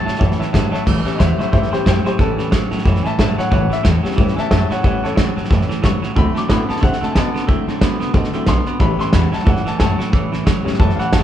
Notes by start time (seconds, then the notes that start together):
Already playing: A5
0.05 G2 A2 F#3 G3 C#4 E4 C#5 E5 A5, snare
0.15 C#5 A5, snare
0.19 F#2 A2 E3 G3 C#4 E4 E5, kick, snare
0.32 snare
0.39 A2 E3 G3 C#4 E4 C#5 E5 A5, muted upright bass stroke, snare
0.52 G2 A2 E3 F#3 G3 C#4 E4 C#5 E5 A5, kick, snare, hi-hat pedal
0.71 A2 F#3 G3 C#4 E4 C#5 E5 A5, muted upright bass stroke, snare
0.85 A1 A2 E3 G3 C#4 E4, kick, snare, crash
1.05 A2 E3 G3 B3 C#4 E4, muted upright bass stroke, snare
1.16 A2 E3 F#3 G3 C5 D#5
1.20 E2 C#4 E4 E5, kick, snare, hi-hat pedal
1.38 A2 F#3 G3 C#4 E4 C5 E5, muted upright bass stroke, snare
1.52 G2 A2 E3 G3 C#4 E4 C5 E5, kick, snare
1.63 snare
1.71 A2 E3 G3 B3 C#4 E4 G4 C5, muted upright bass stroke, snare
1.85 F#2 A2 E3 F#3 G3 C#4 E4 G4 C5, kick, snare, hi-hat pedal
2.05 A2 F#3 G3 C#4 E4 G4 C5, muted upright bass stroke, snare
2.18 A1 A2 E3 G3 B3 C#4 E4 A4, kick, snare
2.38 E2 A2 E3 G3 C#4 E4, snare
2.51 E2 A2 E3 F#3 G3 C#4 E4, kick, snare, hi-hat pedal
2.71 G2 A2 F#3 G3 C#4 E4, snare
2.78 snare
2.84 F#2 A2 E3 G3 C#4 E4, kick, snare
2.96 snare
3.02 A2 E3 E4 E5 G#5, muted upright bass stroke, snare
3.06 G3 C#4 A5
3.19 G2 A2 E3 F#3 G3 C#4 E4 E5 A5, kick, snare, hi-hat pedal
3.37 A2 F#3 G3 C#4 E4 C#5 F#5, muted upright bass stroke, snare
3.50 A1 A2 E3 G3 C#4 E4 C#5 F#5, kick, snare
3.70 A2 E3 G3 C#4 E4 E5, muted upright bass stroke, snare
3.83 E2 A2 E3 F#3 G3 C#4, kick, snare, hi-hat pedal
3.88 E4
4.03 A2 F#3 G3 B3 C#4 E4, muted upright bass stroke, snare
4.07 G3
4.11 snare
4.16 G2 A2 E3 G3 C#4 E4, kick, snare
4.28 snare
4.35 A2 E3 E4 G#5, muted upright bass stroke, snare
4.39 G3 C#4 E5 A5
4.50 F#2 A2 E3 F#3 G3 C#4 E4 E5 A5, kick, snare, hi-hat pedal
4.70 A2 F#3 G3 C#4 E4 C#5 F#5, muted upright bass stroke, snare
4.83 A1 A2 E3 G3 B3 C#4 E4 C#5 F#5, kick, snare
5.03 E2 A2 E3 G3 C#4 E4 A4 C#5, snare
5.15 E2 A2 E3 F#3 G3 C#4 E4, kick, snare, hi-hat pedal
5.36 G2 A2 F#3 G3 C#4 E4, snare
5.44 snare
5.49 F#2 A2 E3 G3 C#4 E4, kick, snare
5.61 snare
5.69 A2 E3 G3 C#4 E4, muted upright bass stroke, snare
5.82 G2 A2 E3 F#3 G3 C#4 C#6, kick, snare, hi-hat pedal
5.87 E4
6.02 A2 F#3 C#4 E4, muted upright bass stroke, snare
6.07 G3
6.16 D2 D3 F#3 A3 C4 E4 F#4 B5, kick, snare
6.35 D3 A3 C4 F#4 D6, muted upright bass stroke, snare
6.48 A2 D3 A3 B3 C4 F#4 B5, kick, snare, hi-hat pedal
6.68 D3 A3 B3 C4 F#4 A5, muted upright bass stroke, snare
6.76 snare
6.81 C3 D3 A3 C4 F#4 F#5, kick, snare
6.93 snare
7.01 D3 A3 C4 F#4 A5, muted upright bass stroke, snare
7.12 D3 A3 B3 G#5, kick, snare, hi-hat pedal
7.16 B2 C4 F#4 A5
7.34 D3 A3 B3 C4 F#4, muted upright bass stroke, snare
7.47 D2 D3 F#3 A3 C4 E4 F#4, kick, snare
7.67 A2 D3 A3 C4 F#4, snare
7.79 A2 D3 A3 B3 C4 F#4, kick, snare, hi-hat pedal
8.00 C3 D3 A3 B3 C4 F#4, snare
8.13 B2 D3 A3 C4 F#4, kick, snare
8.24 snare
8.33 D3 F#3 A3 C4 E4 F#4, muted upright bass stroke, snare
8.46 B1 D3 A3 B3 C4 F#4 C6, kick, snare, hi-hat pedal
8.66 D3 A3 B3 C4 F#4, muted upright bass stroke, snare
8.79 A1 A2 E3 G3 B3 C#4 E4 B5, kick, snare
8.99 A2 E3 G3 C#4 E4 C6, muted upright bass stroke, snare
9.12 E2 A2 E3 F#3 G3 C#4 E4 B5, kick, snare, hi-hat pedal
9.32 A2 F#3 G3 C#4 E4 A5, muted upright bass stroke, snare
9.40 snare
9.45 G2 A2 E3 G3 C#4 E4 F#5, kick, snare
9.57 snare
9.65 A2 E3 G3 C#4 E4 A5, muted upright bass stroke, snare
9.76 F#2 A2 E3 F#3 G3 G#5, kick, snare, hi-hat pedal
9.81 C#4 E4 A5
9.98 A2 F#3 G3 C#4 E4, muted upright bass stroke, snare
10.12 A1 A2 E3 G3 C#4 E4, kick, snare
10.32 E2 A2 E3 G3 C#4 E4, snare
10.45 E2 A2 E3 F#3 G3 C#4 E4, kick, snare, hi-hat pedal
10.65 G2 A2 F#3 G3 B3 C#4 E4, snare
10.73 snare
10.78 F#2 A2 E3 G3 C#4 E4 A5, kick, snare
10.90 snare
10.95 A2 E4 F5, muted upright bass stroke
10.99 E3 G3 C#4 F#5, snare
11.12 F#1 A2 E3 F#3 G3 C#4 E4 A5, kick, snare, hi-hat pedal